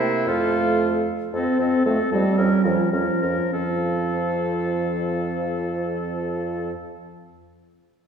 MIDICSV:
0, 0, Header, 1, 6, 480
1, 0, Start_track
1, 0, Key_signature, -1, "major"
1, 0, Tempo, 528169
1, 261, Time_signature, 2, 2, 24, 8
1, 2663, Tempo, 604230
1, 6749, End_track
2, 0, Start_track
2, 0, Title_t, "Flute"
2, 0, Program_c, 0, 73
2, 23, Note_on_c, 0, 79, 58
2, 77, Note_off_c, 0, 79, 0
2, 261, Note_on_c, 0, 77, 66
2, 962, Note_off_c, 0, 77, 0
2, 1215, Note_on_c, 0, 75, 42
2, 1443, Note_off_c, 0, 75, 0
2, 1449, Note_on_c, 0, 75, 38
2, 1674, Note_off_c, 0, 75, 0
2, 1680, Note_on_c, 0, 75, 41
2, 1916, Note_off_c, 0, 75, 0
2, 1925, Note_on_c, 0, 75, 44
2, 2151, Note_off_c, 0, 75, 0
2, 2156, Note_on_c, 0, 73, 51
2, 2396, Note_off_c, 0, 73, 0
2, 2402, Note_on_c, 0, 73, 47
2, 2649, Note_off_c, 0, 73, 0
2, 2655, Note_on_c, 0, 73, 42
2, 2893, Note_off_c, 0, 73, 0
2, 2904, Note_on_c, 0, 73, 34
2, 3138, Note_off_c, 0, 73, 0
2, 3143, Note_on_c, 0, 77, 39
2, 5670, Note_off_c, 0, 77, 0
2, 6749, End_track
3, 0, Start_track
3, 0, Title_t, "Oboe"
3, 0, Program_c, 1, 68
3, 0, Note_on_c, 1, 64, 59
3, 252, Note_on_c, 1, 65, 54
3, 266, Note_off_c, 1, 64, 0
3, 972, Note_off_c, 1, 65, 0
3, 1210, Note_on_c, 1, 69, 41
3, 1444, Note_off_c, 1, 69, 0
3, 1455, Note_on_c, 1, 69, 38
3, 1680, Note_off_c, 1, 69, 0
3, 1685, Note_on_c, 1, 69, 39
3, 1919, Note_off_c, 1, 69, 0
3, 1926, Note_on_c, 1, 69, 41
3, 2153, Note_off_c, 1, 69, 0
3, 2159, Note_on_c, 1, 70, 50
3, 2394, Note_off_c, 1, 70, 0
3, 2399, Note_on_c, 1, 70, 42
3, 2651, Note_off_c, 1, 70, 0
3, 2657, Note_on_c, 1, 70, 40
3, 2888, Note_off_c, 1, 70, 0
3, 2893, Note_on_c, 1, 70, 36
3, 3135, Note_off_c, 1, 70, 0
3, 3143, Note_on_c, 1, 69, 36
3, 5670, Note_off_c, 1, 69, 0
3, 6749, End_track
4, 0, Start_track
4, 0, Title_t, "Clarinet"
4, 0, Program_c, 2, 71
4, 0, Note_on_c, 2, 72, 67
4, 247, Note_off_c, 2, 72, 0
4, 253, Note_on_c, 2, 69, 56
4, 957, Note_off_c, 2, 69, 0
4, 1213, Note_on_c, 2, 60, 42
4, 1441, Note_off_c, 2, 60, 0
4, 1446, Note_on_c, 2, 60, 41
4, 1681, Note_off_c, 2, 60, 0
4, 1689, Note_on_c, 2, 60, 42
4, 1921, Note_off_c, 2, 60, 0
4, 1926, Note_on_c, 2, 60, 42
4, 2159, Note_off_c, 2, 60, 0
4, 2167, Note_on_c, 2, 61, 50
4, 2402, Note_off_c, 2, 61, 0
4, 2408, Note_on_c, 2, 61, 42
4, 2655, Note_off_c, 2, 61, 0
4, 2660, Note_on_c, 2, 61, 44
4, 2895, Note_off_c, 2, 61, 0
4, 2902, Note_on_c, 2, 61, 32
4, 3139, Note_off_c, 2, 61, 0
4, 3144, Note_on_c, 2, 60, 38
4, 5670, Note_off_c, 2, 60, 0
4, 6749, End_track
5, 0, Start_track
5, 0, Title_t, "French horn"
5, 0, Program_c, 3, 60
5, 0, Note_on_c, 3, 58, 54
5, 259, Note_on_c, 3, 57, 53
5, 273, Note_off_c, 3, 58, 0
5, 975, Note_off_c, 3, 57, 0
5, 1216, Note_on_c, 3, 60, 67
5, 1656, Note_off_c, 3, 60, 0
5, 1691, Note_on_c, 3, 57, 60
5, 1797, Note_off_c, 3, 57, 0
5, 1929, Note_on_c, 3, 55, 72
5, 2405, Note_on_c, 3, 53, 60
5, 2419, Note_off_c, 3, 55, 0
5, 2655, Note_off_c, 3, 53, 0
5, 2660, Note_on_c, 3, 53, 53
5, 3133, Note_off_c, 3, 53, 0
5, 3147, Note_on_c, 3, 53, 47
5, 5672, Note_off_c, 3, 53, 0
5, 6749, End_track
6, 0, Start_track
6, 0, Title_t, "Bassoon"
6, 0, Program_c, 4, 70
6, 0, Note_on_c, 4, 48, 58
6, 255, Note_on_c, 4, 41, 57
6, 268, Note_off_c, 4, 48, 0
6, 973, Note_off_c, 4, 41, 0
6, 1209, Note_on_c, 4, 41, 50
6, 1317, Note_off_c, 4, 41, 0
6, 1445, Note_on_c, 4, 41, 40
6, 1553, Note_off_c, 4, 41, 0
6, 1684, Note_on_c, 4, 41, 48
6, 1792, Note_off_c, 4, 41, 0
6, 1922, Note_on_c, 4, 41, 44
6, 2030, Note_off_c, 4, 41, 0
6, 2162, Note_on_c, 4, 41, 53
6, 2272, Note_off_c, 4, 41, 0
6, 2405, Note_on_c, 4, 41, 49
6, 2520, Note_off_c, 4, 41, 0
6, 2659, Note_on_c, 4, 41, 46
6, 2767, Note_off_c, 4, 41, 0
6, 2898, Note_on_c, 4, 41, 35
6, 3008, Note_off_c, 4, 41, 0
6, 3143, Note_on_c, 4, 41, 41
6, 5670, Note_off_c, 4, 41, 0
6, 6749, End_track
0, 0, End_of_file